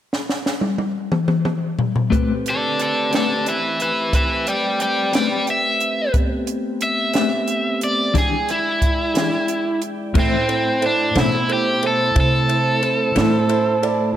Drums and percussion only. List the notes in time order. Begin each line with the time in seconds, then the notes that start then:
0.13 snare
0.29 snare
0.46 snare
0.61 high tom
0.78 high tom
1.12 mid tom
1.28 mid tom
1.45 mid tom
1.79 floor tom
1.96 floor tom
2.12 kick, closed hi-hat
2.46 closed hi-hat
2.79 closed hi-hat
3.13 snare, closed hi-hat
3.46 closed hi-hat
3.80 closed hi-hat
4.13 kick, closed hi-hat
4.47 closed hi-hat
4.80 closed hi-hat
5.13 snare, closed hi-hat
5.47 closed hi-hat
5.80 closed hi-hat
6.14 kick, closed hi-hat
6.47 closed hi-hat
6.81 closed hi-hat
7.14 snare, closed hi-hat
7.48 closed hi-hat
7.81 closed hi-hat
8.15 kick, snare, closed hi-hat
8.49 closed hi-hat
8.82 kick, closed hi-hat
9.15 snare, closed hi-hat
9.48 closed hi-hat
9.82 closed hi-hat
10.15 kick, crash
10.49 ride
10.82 ride
11.15 snare, ride
11.49 ride
11.83 ride
12.16 kick, ride
12.49 ride
12.83 ride
13.16 snare, ride
13.49 ride
13.83 ride